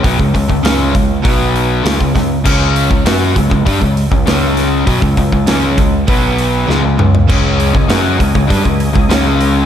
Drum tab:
CC |----------------|x---------------|----------------|x---------------|
HH |o-o-o-o-o-o-o-o-|--o-o-o-o-o-o-o-|o-o-o-o-o-o-----|--o-o-o-o-o-o-o-|
SD |----o-------o-o-|----o-------o-o-|----o-------o---|----o-------o---|
T2 |----------------|----------------|--------------o-|----------------|
FT |----------------|----------------|---------------o|----------------|
BD |oooo--o-o----oo-|o--o--oooo-o----|oooo--o-o-------|o--o--oooo-o----|